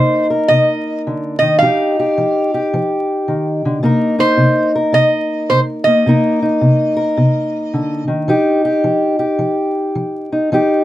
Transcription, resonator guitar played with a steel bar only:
0.00 0.26 C5 loud
0.48 1.01 D#5 loud
1.39 1.58 D#5 medium
1.59 2.67 F5 medium
4.20 4.71 C5 loud
4.94 5.52 D#5 loud
5.50 5.59 C5 medium
5.84 8.04 D#5 medium

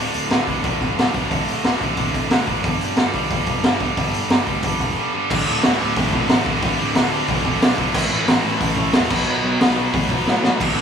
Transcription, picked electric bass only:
0.15 0.26 D1 medium
0.30 0.42 D1 medium
0.47 0.59 D1 medium
0.64 0.76 D1 medium
0.80 0.92 D1 medium
0.97 1.09 D1 medium
1.15 1.26 D1 medium
1.31 1.54 D1 loud
1.63 1.75 D1 medium
1.81 1.92 A1 medium
1.97 2.09 D1 medium
2.14 2.26 D1 medium
2.30 2.42 A1 loud
2.47 2.59 A1 medium
2.64 2.76 G1 loud
2.79 2.92 G1 medium
2.96 3.08 G1 medium
3.14 3.26 G1 medium
3.30 3.42 G1 medium
3.47 3.59 G1 medium
3.63 3.75 G1 loud
3.80 3.92 G1 medium
3.97 4.20 G1 loud
4.30 4.42 G1 medium
4.47 4.59 D2 medium
4.63 4.75 G1 medium
4.80 4.92 E1 medium
5.31 5.44 D1 loud
5.48 5.61 D1 medium
5.65 5.77 D1 medium
5.82 5.94 D1 medium
5.97 6.10 D1 medium
6.13 6.26 D1 medium
6.31 6.43 A1 loud
6.46 6.59 D1 medium
6.63 6.76 D1 loud
6.80 6.93 D1 medium
6.96 7.21 D1 medium
7.28 7.41 B1 medium
7.44 7.58 D1 loud
7.61 7.87 B1 loud
7.94 8.07 A1 medium
8.11 8.24 A1 loud
8.27 8.40 A1 loud
8.43 8.57 A1 medium
8.61 8.74 A1 medium
8.77 8.90 A1 loud
8.93 9.06 E1 loud
9.11 9.24 B1 medium
9.26 9.40 B1 loud
9.42 9.56 B1 medium
9.60 9.86 B1 medium
9.94 10.06 A2 medium
10.11 10.23 B1 medium
10.27 10.52 A2 medium
10.61 10.73 D1 medium
10.76 10.81 D1 medium

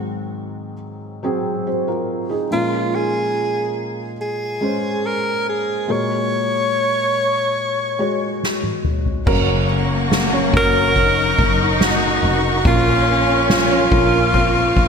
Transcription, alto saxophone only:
2.52 2.97 F4 medium
2.95 3.79 G#4 medium
4.21 5.08 G#4 medium
5.06 5.48 A#4 medium
5.49 5.93 G#4 medium
5.91 8.44 C#5 medium
10.57 11.78 A#4 loud
11.83 12.62 F#4 medium
12.67 13.46 F4 loud
13.52 14.88 F4 medium

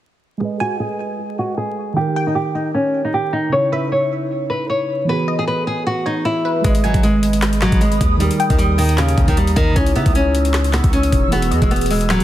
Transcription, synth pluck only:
0.60 0.79 G#5 medium
2.16 2.35 G5 medium
3.73 3.91 E5 medium
5.28 5.47 D#5 medium
6.06 6.43 C#5 medium
6.45 6.63 B4 medium
6.84 7.02 G#5 medium
8.40 8.58 G5 medium
9.96 10.14 E5 medium
11.51 11.70 D#5 medium

